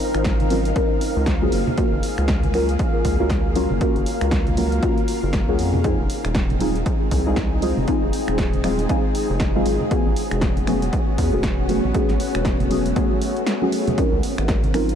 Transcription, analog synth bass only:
0.15 0.73 G#1 loud
1.16 1.49 C#2 loud
1.52 1.65 F#1 medium
1.93 2.01 F#1 loud
2.18 2.77 C#2 loud
3.05 3.17 C#2 medium
3.20 3.67 C#2 loud
3.71 3.79 F#1 medium
3.96 4.05 F#1 loud
4.21 4.80 C#2 loud
5.23 5.48 F#1 loud
5.48 5.60 C#2 medium
5.59 5.95 F2 medium
5.99 6.08 F1 loud
6.25 6.83 D#1 medium
7.11 7.24 C2 medium
7.26 7.73 C2 loud
7.77 7.86 F1 medium
8.03 8.11 F1 loud
8.28 8.87 D#1 loud
9.30 9.63 F1 loud
9.66 9.78 G#1 medium
10.06 10.15 A1 loud
10.32 10.90 E1 loud
11.18 11.31 E2 medium
11.33 11.80 E1 loud
11.84 11.93 A1 medium
12.09 12.18 A1 loud
12.35 12.94 E1 loud
14.13 14.22 C#2 loud
14.38 14.95 G#1 loud

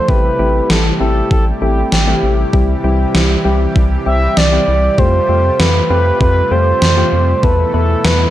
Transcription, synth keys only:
0.09 0.31 A3 medium
0.09 0.31 C4 medium
0.09 0.31 E4 medium
0.09 0.31 G4 medium
0.39 0.84 A3 medium
0.39 0.84 C4 medium
0.39 0.84 E4 medium
0.39 0.84 G4 medium
1.00 1.45 A3 medium
1.00 1.45 C4 medium
1.00 1.45 E4 medium
1.00 1.45 G4 medium
1.62 1.95 A3 medium
1.62 1.95 C4 medium
1.62 1.95 E4 medium
1.62 1.95 G4 medium
2.07 2.41 A3 medium
2.07 2.41 C4 medium
2.07 2.41 E4 medium
2.07 2.41 G4 medium
2.53 2.76 G3 medium
2.53 2.76 C4 medium
2.53 2.76 E4 medium
2.53 2.76 G4 medium
2.84 3.29 G3 medium
2.84 3.29 C4 medium
2.84 3.29 E4 medium
2.84 3.29 G4 medium
3.45 3.90 G3 medium
3.45 3.90 C4 medium
3.45 3.90 E4 medium
3.45 3.90 G4 loud
4.06 4.40 G3 medium
4.06 4.40 C4 medium
4.06 4.40 E4 medium
4.06 4.40 G4 medium
4.52 4.86 G3 medium
4.52 4.86 C4 medium
4.52 4.86 E4 medium
4.52 4.86 G4 medium
4.98 5.21 A3 medium
4.98 5.21 C4 medium
4.98 5.21 F4 medium
4.98 5.21 G4 medium
5.29 5.74 A3 medium
5.29 5.74 C4 medium
5.29 5.74 F4 medium
5.29 5.74 G4 medium
5.90 6.35 A3 medium
5.90 6.35 C4 medium
5.90 6.35 F4 medium
5.90 6.35 G4 medium
6.51 6.85 A3 medium
6.51 6.85 C4 medium
6.51 6.85 F4 medium
6.51 6.85 G4 medium
6.97 7.31 A3 medium
6.97 7.31 C4 medium
6.97 7.31 F4 medium
6.97 7.31 G4 medium
7.43 7.66 A3 medium
7.43 7.66 B3 medium
7.43 7.66 E4 medium
7.43 7.66 A4 medium
7.74 8.19 A3 medium
7.74 8.19 B3 medium
7.74 8.19 E4 medium
7.74 8.19 B4 medium

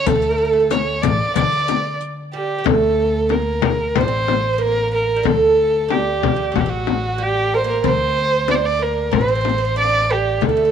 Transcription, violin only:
0.06 0.72 A4 medium
0.71 1.04 C#5 medium
1.02 1.35 D5 medium
1.36 1.97 D5 medium
2.34 2.68 G4 medium
2.66 3.33 A4 medium
3.31 3.99 A#4 medium
3.98 4.53 C5 medium
4.53 4.63 C5 medium
4.61 4.93 A#4 medium
4.94 5.28 A#4 medium
5.27 5.92 A4 medium
5.91 6.57 G4 medium
6.56 6.62 F#4 medium
6.60 6.71 G4 medium
6.70 7.24 F#4 medium
7.22 7.55 G4 medium
7.54 7.58 A#4 medium
7.54 7.69 C5 medium
7.68 7.85 A#4 medium
7.86 8.52 C5 loud
8.51 8.57 D5 medium
8.55 8.67 C5 medium
8.65 8.84 D5 medium
8.83 9.16 A#4 medium
9.15 9.78 C5 medium
9.79 10.14 D5 medium
10.12 10.45 G4 medium
10.44 10.71 A4 medium

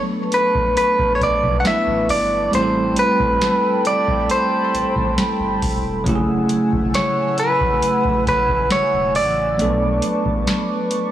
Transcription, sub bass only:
1.21 1.30 B1 soft
1.43 1.63 B1 medium
1.87 2.07 A1 medium
2.09 2.49 G1 medium
2.53 2.94 A1 loud
3.20 3.40 G1 loud
4.74 4.83 A1 medium
4.96 5.16 A1 medium
5.40 5.64 G1 loud
5.62 6.08 E1 loud
6.06 6.46 F#1 loud
6.73 6.93 E1 loud
8.27 8.36 F#1 medium
8.49 8.69 F#1 medium
8.93 9.17 E1 medium
9.15 9.61 A1 loud
9.59 9.99 B1 loud
10.26 10.46 A1 loud

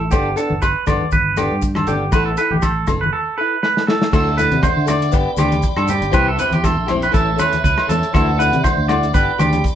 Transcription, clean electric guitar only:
0.00 0.10 A4 medium
0.11 0.35 G4 medium
0.37 0.61 A4 medium
0.62 0.86 B4 medium
0.87 1.11 D5 medium
1.13 1.36 B4 medium
1.38 1.61 G4 medium
1.76 1.87 A4 medium
1.88 2.11 G4 medium
2.13 2.25 B4 medium
2.26 2.37 A4 medium
2.38 2.50 B4 medium
2.51 2.62 G4 medium
2.63 2.87 A4 medium
3.01 3.12 B4 medium
3.13 3.37 A4 medium
3.38 3.62 B4 medium
3.63 3.87 B4 medium
3.87 4.12 A4 medium
4.13 4.37 A4 medium
4.37 4.62 B4 medium
4.63 4.87 C5 medium
4.88 5.12 D5 medium
5.14 muted clean electric guitar stroke medium
5.39 5.63 G4 medium
5.77 5.88 A4 medium
5.90 6.13 G4 medium
6.14 6.27 B4 medium
6.28 6.39 A4 medium
6.39 6.52 B4 medium
6.53 6.64 G4 medium
6.65 6.88 A4 medium
7.03 7.14 B4 medium
7.14 7.38 A4 medium
7.39 7.63 B4 medium
7.64 7.88 B4 medium
7.89 8.13 A4 medium
8.14 8.38 A4 medium
8.39 8.63 B4 medium
8.64 8.88 C5 medium
8.88 9.13 D5 medium
9.14 9.38 B4 medium
9.39 9.63 G4 medium

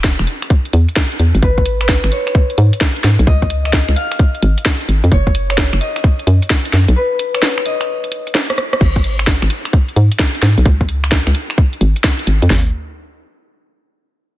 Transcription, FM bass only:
0.00 0.16 E1 loud
0.19 0.26 E1 medium
0.73 0.87 E2 loud
1.20 1.33 E2 medium
1.35 1.42 G#1 loud
1.43 2.01 G#1 loud
2.04 2.11 G#1 medium
2.58 2.71 G#2 loud
3.04 3.18 G#2 medium
3.19 3.26 B1 loud
3.27 3.86 C#2 loud
3.88 3.95 C#2 medium
4.42 4.56 G#1 loud
4.89 5.02 G#1 medium
5.04 5.11 F2 loud
5.12 5.70 F#1 loud
5.73 5.80 F#1 medium
6.27 6.40 F#2 loud
6.73 6.87 F#2 medium
6.88 6.95 B1 loud
8.81 9.39 G#1 loud
9.42 9.49 G#1 medium
9.96 10.10 G#2 loud
10.43 10.56 G#2 medium
10.58 10.65 B1 loud
10.66 11.24 C#2 loud
11.27 11.34 C#2 medium
11.81 11.94 G#1 loud
12.27 12.41 G#1 medium
12.42 12.49 F2 loud
12.50 12.72 G#1 loud

